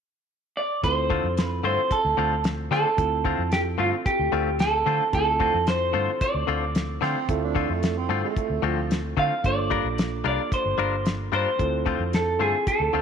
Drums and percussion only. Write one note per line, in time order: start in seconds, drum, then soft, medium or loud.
0.84 kick medium
0.84 closed hi-hat medium
1.10 kick medium
1.37 snare loud
1.37 closed hi-hat medium
1.91 kick loud
1.91 closed hi-hat medium
2.44 snare loud
2.44 closed hi-hat medium
2.73 snare soft
2.98 kick loud
2.98 closed hi-hat medium
3.25 kick medium
3.52 snare loud
3.52 closed hi-hat medium
4.06 kick loud
4.06 closed hi-hat medium
4.59 snare loud
4.59 closed hi-hat medium
5.13 kick loud
5.13 closed hi-hat medium
5.40 kick medium
5.67 snare loud
5.67 closed hi-hat medium
6.21 kick loud
6.21 closed hi-hat medium
6.75 snare medium
6.75 closed hi-hat medium
7.03 snare soft
7.29 kick loud
7.29 closed hi-hat medium
7.56 kick medium
7.83 snare loud
7.83 closed hi-hat medium
8.37 kick medium
8.37 closed hi-hat medium
8.91 snare loud
8.91 closed hi-hat medium
9.17 kick medium
9.44 kick loud
9.44 closed hi-hat medium
9.71 kick medium
9.98 snare loud
9.98 closed hi-hat medium
10.52 kick loud
10.52 closed hi-hat medium
11.05 snare medium
11.05 closed hi-hat medium
11.59 kick loud
11.59 closed hi-hat medium
11.86 kick medium
12.13 snare loud
12.13 closed hi-hat medium
12.67 kick loud
12.67 closed hi-hat medium